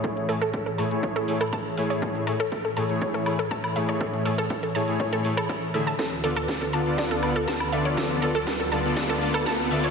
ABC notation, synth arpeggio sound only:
X:1
M:4/4
L:1/16
Q:1/4=121
K:A
V:1 name="Synth arpeggio sound"
A z A A z A a z c A z A a z e c | A z A A z A a z c A z A a z e c | A z A A z A a z c A z A A z A a | A z A A z A a z d A z A a z e c |
A z A A z A a z d A z A a z e c |]